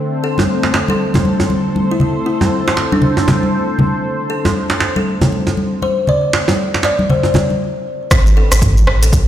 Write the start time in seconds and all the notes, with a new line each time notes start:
Already playing: D3 A3 C4 A4
0.00 C5
0.24 A4
0.38 high conga, djembe tone
0.63 djembe slap
0.74 djembe slap
0.88 A4, high conga
1.14 high conga, djembe tone, low conga
1.25 high conga
1.40 djembe tone
1.50 high conga
1.76 high conga
1.91 E4
2.00 E4, low conga
2.26 E4
2.41 djembe tone, high conga
2.68 djembe slap
2.77 djembe slap
2.92 D4, high conga
3.02 low conga
3.17 djembe tone
3.28 djembe tone, high conga, low conga
3.43 high conga
3.79 high conga, low conga
4.30 A4
4.45 high conga, djembe tone
4.70 djembe slap
4.80 djembe slap
4.96 A4, high conga
5.21 high conga, djembe tone, low conga
5.32 high conga
5.47 djembe tone
5.57 high conga
5.82 C5, high conga
6.07 D5, low conga
6.33 djembe slap
6.48 djembe tone, high conga
6.74 djembe slap
6.83 D5, djembe slap
6.99 high conga
7.10 C5, low conga
7.23 C5, djembe tone
7.34 high conga, djembe tone, low conga
7.50 high conga
8.11 D3 C4 G4 B4, kick, cross-stick, closed hi-hat, shaker
8.27 shaker
8.37 A4
8.52 A1, cross-stick, closed hi-hat, shaker
8.62 kick, closed hi-hat, mid tom, shaker
8.77 shaker
8.87 A1, cross-stick
9.03 A4, closed hi-hat, shaker
9.13 kick, closed hi-hat, shaker